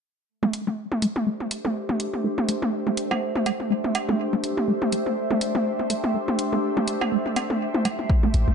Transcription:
0.29 ambient pad A3
0.43 synth arpeggio sound A3, ambient pad D4, high tom
0.48 ambient pad G4
0.53 closed hi-hat
0.67 synth arpeggio sound A3, high tom
0.76 ambient pad C5
0.85 ambient pad E5
0.92 high tom
1.02 synth arpeggio sound A3, closed hi-hat
1.16 high tom
1.27 synth arpeggio sound A3
1.40 high tom
1.51 closed hi-hat
1.65 synth arpeggio sound A3, high tom
1.89 synth arpeggio sound A3, high tom
2.00 closed hi-hat
2.14 high tom
2.24 synth arpeggio sound A3
2.38 high tom
2.49 synth arpeggio sound A3, closed hi-hat
2.62 high tom
2.87 synth arpeggio sound A3, high tom
2.97 closed hi-hat
3.11 synth arpeggio sound A3, high tom, cowbell
3.36 high tom
3.46 synth arpeggio sound A3, closed hi-hat, cowbell
3.60 high tom
3.70 synth arpeggio sound A3
3.84 high tom
3.95 closed hi-hat, cowbell
4.09 synth arpeggio sound A3, high tom
4.33 synth arpeggio sound A3, high tom
4.44 closed hi-hat
4.57 high tom
4.68 synth arpeggio sound A3
4.82 high tom
4.92 synth arpeggio sound A3, closed hi-hat
5.06 high tom
5.31 synth arpeggio sound A3, high tom
5.41 closed hi-hat
5.55 synth arpeggio sound A3, high tom
5.79 high tom
5.90 synth arpeggio sound A3, closed hi-hat
6.04 high tom
6.14 synth arpeggio sound A3
6.28 high tom
6.39 closed hi-hat
6.53 synth arpeggio sound A3, high tom
6.77 synth arpeggio sound A3, high tom
6.88 closed hi-hat
7.01 high tom, cowbell
7.12 synth arpeggio sound A3
7.26 high tom
7.36 synth arpeggio sound C4, closed hi-hat, cowbell
7.50 synth arpeggio sound A4, high tom
7.74 synth arpeggio sound E4, high tom
7.85 synth arpeggio sound A3, closed hi-hat, cowbell
7.99 synth arpeggio sound E4, high tom
8.10 kick
8.23 synth arpeggio sound A3, high tom
8.34 sub bass A1, closed hi-hat
8.48 sub bass A1, synth arpeggio sound A3, high tom

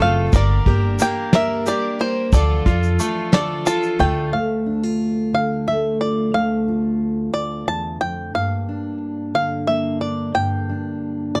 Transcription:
Already playing: upright piano F4 A4
0.00 upright bass F#1, upright piano A3, twelve-string acoustic guitar C4 F4 A4, five-string banjo F5, closed hi-hat
0.33 upright bass G1, twelve-string acoustic guitar G2 D3 G3 A#3 D4 A#4, upright piano A#4, five-string banjo D5, kick, closed hi-hat, shaker
0.66 upright bass G1, twelve-string acoustic guitar G3 A#3 D4 A#4, upright piano G4, kick, closed hi-hat
0.99 twelve-string acoustic guitar G3 A#3 D4 A#4, upright piano A#3, five-string banjo G5, closed hi-hat, shaker
1.33 twelve-string acoustic guitar G2 D3 G3 A#3 D4 A#4, upright piano A#4, five-string banjo E5, snare, closed hi-hat
1.66 twelve-string acoustic guitar G3 A#3 D4 A#4, upright piano G4, five-string banjo D5, closed hi-hat, shaker
1.99 twelve-string acoustic guitar G3 A#3 D4 A#4, five-string banjo C5, closed hi-hat
2.33 upright bass D2, twelve-string acoustic guitar D3 F3 D4 F4 A4, upright piano A4, five-string banjo D5, kick, closed hi-hat, shaker
2.66 upright bass F2, twelve-string acoustic guitar D4 F4 A4, upright piano F4, kick, closed hi-hat, shaker
2.83 shaker
2.99 twelve-string acoustic guitar F3 D4 F4 A4, upright piano A3, closed hi-hat, shaker
3.32 twelve-string acoustic guitar D3 F3 D4 F4 A4, upright piano A4, five-string banjo D5, snare, closed hi-hat, shaker
3.65 twelve-string acoustic guitar F3 D4 F4 A4, upright piano F4, five-string banjo A5, closed hi-hat, shaker
3.83 shaker
3.99 upright bass D2, upright piano A3, twelve-string acoustic guitar D4 F4 A4, five-string banjo G5, closed hi-hat, shaker
4.32 steel-string acoustic guitar D2 A3, five-string banjo F5
4.66 steel-string acoustic guitar D4
4.83 steel-string acoustic guitar F4
5.33 steel-string acoustic guitar D3, five-string banjo F5
5.68 steel-string acoustic guitar A3, five-string banjo E5
6.01 steel-string acoustic guitar F4, five-string banjo D5
6.34 steel-string acoustic guitar D2 A3, five-string banjo F5
6.68 steel-string acoustic guitar F4
7.34 steel-string acoustic guitar D2, five-string banjo D5
7.67 steel-string acoustic guitar E2, five-string banjo A5
8.01 steel-string acoustic guitar F2, five-string banjo G5
8.34 steel-string acoustic guitar G2 A#3, five-string banjo F5
8.69 steel-string acoustic guitar D4
9.34 steel-string acoustic guitar D3, five-string banjo F5
9.67 steel-string acoustic guitar A#3, five-string banjo E5
10.01 steel-string acoustic guitar D4, five-string banjo D5
10.34 steel-string acoustic guitar G2 A#3, five-string banjo G5
10.69 steel-string acoustic guitar D4
11.35 steel-string acoustic guitar D3, five-string banjo D5

